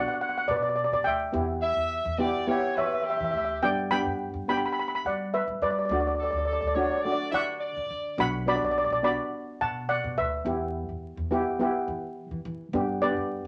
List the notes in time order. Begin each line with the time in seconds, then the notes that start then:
Already playing: B3 D4 F#4
0.08 F#5
0.14 F#5
0.21 F#5
0.29 F#5
0.38 F#5
0.48 B2 B4 D5
0.56 D5
0.63 D5
0.69 D5
0.76 D5
0.84 D5
0.92 B2 D5
1.04 D2 E5 G5
1.32 E2 B3 E4 G4
1.62 E5
1.77 E2
2.05 E2
2.18 B3 E4 G4 D5
2.47 B3 E4 G4 C#5
2.76 E3 B4 C#5 E5
2.86 E5
2.94 E5
3.02 G4 E5
3.10 E5
3.17 E3 E5
3.24 E5
3.31 D2 E5
3.37 E5
3.45 E5
3.62 G2 B3 D4 G4 D5 G5
3.91 B3 D4 G4 G5 B5
4.06 G2
4.34 G2
4.48 B3 D4 G4 G5 B5
4.57 B5
4.66 B5
4.72 B5
4.79 B5
4.88 B5
4.95 B5
5.05 G3 D5 F#5
5.34 B4 E5
5.48 G3
5.62 G3 B4 D5
5.71 D5
5.79 D5
5.85 D2 D5
5.91 A3 D4 F#4 D5
6.00 D5
6.07 D5
6.15 A4 D5
6.23 D5
6.31 D2 D5
6.38 D5
6.45 A4 D5
6.53 D5
6.61 D2 D5
6.67 D5
6.74 A3 D4 F#4 C#5 D5
6.82 D5
6.91 D5
6.97 D5
7.02 A3 D4 F#4 D5
7.12 D5
7.31 D3 D5 E5 F#5
7.60 D5
7.77 D3
7.91 D3
8.18 B1 B3 D4 F#4 F#5 B5
8.46 B3 D4 F#4 D5 B5
8.56 D5
8.62 B1 D5
8.71 D5
8.78 D5
8.85 D5
8.90 B1 D5
9.03 B3 D4 F#4 D5 B5
9.61 B2 F#5 A5
9.89 D5 F#5
10.04 B2
10.18 D2 B4 E5
10.45 E2 B3 E4 G4
10.89 E2
11.17 E2
11.31 B3 E4 G4
11.59 B3 E4 G4
11.88 E3
12.31 E3
12.45 E3
12.73 G2 B3 D4 G4
13.02 B3 D4 G4 B4 D5
13.17 G2